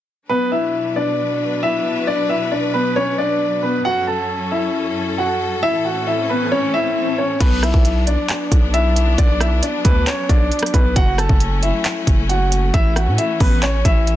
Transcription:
0.29 B2 F#3 B3 D4 B4
0.52 E4 E5
0.96 D4 D5
1.63 E4 E5
2.07 D4 D5
2.29 E4 E5
2.52 D4 D5
2.74 B3 B4
2.96 C#4 C#5
3.18 D4 D5
3.63 B3 B4
3.85 F#2 C#4 F#4 A4 F#5
4.07 A4 A5
4.52 E4 E5
5.18 F#4 F#5
5.63 A2 E3 C#4 E4 E5, swell
5.85 F#4 F#5
6.07 E4 E5
6.29 B3 B4
6.52 C#4 C#5
6.74 E4 E5
7.18 C#4 C#5
7.40 B1 F#3 B3 D4 B4, kick, closed hi-hat, crash
7.63 E4 E5, cross-stick, closed hi-hat
7.74 B1, kick
7.85 closed hi-hat
8.07 D4 D5, closed hi-hat
8.29 clap, closed hi-hat
8.52 B1, kick, closed hi-hat
8.74 E4 E5, closed hi-hat
8.96 closed hi-hat
9.18 B1 D4 D5, kick, closed hi-hat
9.40 E4 E5, cross-stick, closed hi-hat
9.63 D4 D5, closed hi-hat
9.85 D2 B3 B4, kick, closed hi-hat
10.06 C#4 C#5, cross-stick, clap, closed hi-hat
10.29 B1 D4 D5, kick, closed hi-hat
10.52 closed hi-hat
10.59 cross-stick, closed hi-hat
10.66 closed hi-hat
10.74 B1 B3 B4, kick, closed hi-hat
10.96 F#1 A3 C#4 F#4 F#5, kick, closed hi-hat
11.18 A4 A5, cross-stick, closed hi-hat
11.29 F#1, kick
11.40 closed hi-hat
11.63 E4 E5, closed hi-hat
11.84 clap, closed hi-hat
12.07 F#1, kick, closed hi-hat
12.29 F#4 F#5, closed hi-hat
12.52 closed hi-hat
12.74 A1 E3 C#4 E4 E5, kick, closed hi-hat
12.96 F#4 F#5, cross-stick, closed hi-hat
13.07 A2
13.18 E4 E5, closed hi-hat
13.40 A1 B3 B4, kick, open hi-hat
13.62 C#4 C#5, clap, closed hi-hat
13.85 A1 E4 E5, kick, closed hi-hat
14.07 closed hi-hat

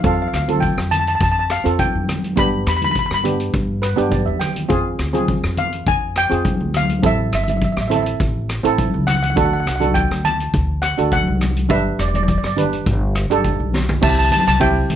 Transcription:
0.00 F2 C4 F4 F5, kick, closed hi-hat
0.05 A4 F5
0.14 F5
0.22 F5
0.28 F5
0.33 D2 F5, cross-stick, closed hi-hat
0.42 F5
0.48 C4 F4 A4, closed hi-hat, high conga, low conga
0.60 G5, kick, closed hi-hat
0.78 F2, cross-stick
0.91 A5, closed hi-hat, low conga
1.00 A5
1.07 A5, closed hi-hat
1.15 A5
1.20 F2 A5, kick, closed hi-hat
1.32 A5
1.39 A5
1.50 F5, cross-stick, closed hi-hat
1.64 F2 C4 F4 A4, closed hi-hat
1.79 G5, kick, closed hi-hat, high conga
1.94 F2, high conga
2.08 cross-stick, closed hi-hat, high conga, low conga
2.23 closed hi-hat, high conga
2.36 G2 B3 D4 G4 B5, kick, closed hi-hat
2.67 E2 B5, cross-stick, closed hi-hat
2.77 B5
2.82 B5, closed hi-hat, high conga, low conga
2.91 B5, kick, closed hi-hat
2.99 B5
3.06 B5
3.11 G2 B5, cross-stick
3.23 B3 D4 G4, closed hi-hat, low conga
3.40 closed hi-hat
3.54 G2, kick, closed hi-hat
3.82 B4, cross-stick, closed hi-hat
3.96 G2 B3 D4 G4, closed hi-hat, high conga
4.11 D5, kick, closed hi-hat, high conga
4.26 E2 E5, high conga
4.39 G5, cross-stick, closed hi-hat, low conga
4.56 closed hi-hat, low conga
4.69 F2 C4 F4 G#4, kick, closed hi-hat
4.99 D2, cross-stick, closed hi-hat
5.13 C4 F4 G#4, closed hi-hat, high conga, low conga
5.28 kick, closed hi-hat
5.44 F2, cross-stick
5.57 F5, closed hi-hat, low conga
5.72 closed hi-hat
5.87 F2 G#5, kick, closed hi-hat
6.16 G5, cross-stick, closed hi-hat
6.30 F2 C4 F4 G#4, closed hi-hat
6.45 kick, closed hi-hat, high conga
6.60 D2, high conga
6.74 F5, cross-stick, closed hi-hat, high conga, low conga
6.89 closed hi-hat, high conga
7.02 A1 C4 E4 A4 E5, kick, closed hi-hat
7.33 G1 E5, cross-stick, closed hi-hat
7.44 E5
7.48 E5, closed hi-hat, high conga, low conga
7.57 E5
7.61 E5, kick, closed hi-hat
7.72 E5
7.77 A1, cross-stick
7.81 E5
7.88 C4 E4 A4 E5, closed hi-hat, low conga
7.96 E5
8.03 E5, closed hi-hat
8.20 A1, kick, closed hi-hat
8.49 cross-stick, closed hi-hat
8.63 A1 C4 E4 A4, closed hi-hat
8.78 kick, closed hi-hat, high conga
8.94 C#2, high conga
9.07 F#5, cross-stick, closed hi-hat, high conga, low conga
9.15 F#5
9.23 F#5, closed hi-hat, high conga
9.30 F#5
9.36 D2 D4 F#4 A4 F#5, kick, closed hi-hat
9.45 F#5
9.53 F#5
9.60 F#5
9.66 C2 F#5, cross-stick, closed hi-hat
9.76 F#5
9.80 D4 F#4 A4, closed hi-hat, high conga, low conga
9.94 G5, kick, closed hi-hat
10.11 D2, cross-stick
10.24 A5, closed hi-hat, low conga
10.40 closed hi-hat
10.54 D2, kick, closed hi-hat
10.82 F#5, cross-stick, closed hi-hat
10.98 D2 D4 F#4 A4, closed hi-hat
11.12 F#5, kick, closed hi-hat, high conga
11.27 C2, high conga
11.41 cross-stick, closed hi-hat, high conga, low conga
11.56 closed hi-hat, high conga
11.69 G1 D4 G4 B4 E5, kick, closed hi-hat
11.99 E1 D5, cross-stick, closed hi-hat
12.08 D5
12.14 D5, closed hi-hat, high conga, low conga
12.23 D5
12.28 D5, kick, closed hi-hat
12.38 D5
12.43 G1 D5, cross-stick
12.57 D4 G4 B4, closed hi-hat, low conga
12.73 closed hi-hat
12.86 G1, kick, closed hi-hat
13.15 cross-stick, closed hi-hat
13.30 G1 D4 G4 A4, closed hi-hat, high conga
13.44 kick, closed hi-hat, high conga
13.60 B1, high conga
13.73 snare, low conga
13.88 floor tom, low conga
14.01 C2 C4 E4 G4 E5 A5, kick, crash, low conga
14.10 A5
14.19 A5
14.25 A5
14.31 A5, closed hi-hat, high conga, low conga
14.40 A5
14.47 C2 A5, cross-stick, closed hi-hat
14.60 C4 E4 G4 E5 G5, kick, closed hi-hat
14.90 C2, closed hi-hat, high conga, low conga

